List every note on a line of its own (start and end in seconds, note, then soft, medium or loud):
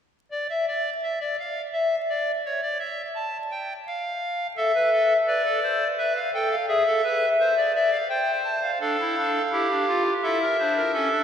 0.31 0.47 D5 medium
0.50 0.66 E5 medium
0.68 0.90 D5 medium
1.03 1.19 E5 medium
1.20 1.36 D5 medium
1.39 1.61 F5 medium
1.73 1.96 E5 medium
2.09 2.31 D5 medium
2.45 2.60 C#5 medium
2.62 2.78 D5 medium
2.80 3.02 E5 medium
3.15 3.37 A5 medium
3.51 3.73 G5 medium
3.87 4.47 F5 medium
4.57 4.72 A4 medium
4.57 5.17 E5 medium
4.75 4.90 B4 medium
4.92 5.13 A4 medium
5.27 5.42 B4 medium
5.27 5.87 D5 medium
5.45 5.60 A4 medium
5.63 5.84 C5 medium
5.98 6.20 B4 medium
5.98 6.13 E5 medium
6.16 6.31 F5 medium
6.34 6.55 A4 medium
6.34 6.48 G5 medium
6.51 6.66 F5 medium
6.68 6.83 G#4 medium
6.68 7.29 E5 medium
6.87 7.02 A4 medium
7.04 7.26 B4 medium
7.39 7.54 C5 medium
7.39 7.61 E5 medium
7.57 7.72 D5 medium
7.75 7.97 D5 medium
7.75 7.90 E5 medium
7.92 8.07 F5 medium
8.09 8.71 C5 medium
8.09 8.32 G5 medium
8.45 8.60 A5 medium
8.62 8.78 F5 medium
8.81 8.96 D4 medium
8.81 9.42 A4 medium
8.81 10.03 F5 medium
9.00 9.15 E4 medium
9.17 9.39 D4 medium
9.52 9.67 E4 medium
9.52 10.13 G4 medium
9.70 9.86 D4 medium
9.88 10.10 F4 medium
10.23 10.45 E4 medium
10.23 10.39 A4 medium
10.23 11.24 E5 medium
10.42 10.57 A#4 medium
10.59 10.81 D4 medium
10.59 10.74 C5 medium
10.76 10.91 A#4 medium
10.93 11.09 C#4 medium
10.93 11.24 A4 medium
11.12 11.24 D4 medium